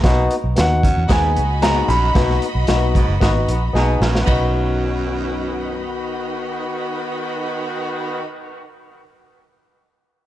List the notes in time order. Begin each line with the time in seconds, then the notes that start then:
0.03 B1 B2 B3 D#4 F#4, kick, snare, closed hi-hat
0.31 closed hi-hat
0.44 B1
0.56 D#2 B3 D#4 F#4, snare, closed hi-hat
0.61 F#5
0.83 F#2, kick, closed hi-hat
0.97 E2
1.08 D#2 G#2 B3 D#4 F#4 G#4 D#5 B5, kick, snare, closed hi-hat
1.12 G#5
1.35 C#2 B3 D#4 F#4, closed hi-hat
1.62 G#2 B3 D#4 F#4 G#4 A#5, snare, closed hi-hat
1.88 A#1 F#2 B5, closed hi-hat
2.15 B1 B2 B3 D#4 F#4, kick, snare, closed hi-hat
2.30 snare
2.42 closed hi-hat
2.55 B1
2.67 B1 B3 D#4 F#4, snare, closed hi-hat
2.95 G#2, kick, closed hi-hat
3.08 F#1
3.20 G#1 B3 D#4 F#4, kick, snare, closed hi-hat
3.48 A#1 B3 D#4 F#4, closed hi-hat
3.73 B1 B2 B3 D#4 F#4 G#4, snare
4.01 A#1 F#2, snare
4.15 snare
4.24 B1 F#2 D#3 B3 D#4 F#4 D#5 B5, kick, ride bell
4.31 F#4